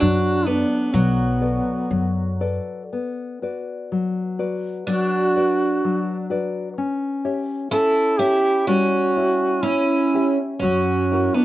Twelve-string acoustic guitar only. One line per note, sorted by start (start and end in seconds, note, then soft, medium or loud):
0.00 0.46 D4 medium
0.46 0.94 B3 medium
0.93 2.41 F#3 medium
4.87 6.25 D4 medium
7.71 8.15 E4 medium
8.19 8.67 E4 medium
8.67 9.61 C#4 medium
9.63 10.37 C#4 medium
10.60 11.34 C#4 medium
11.34 11.45 B3 medium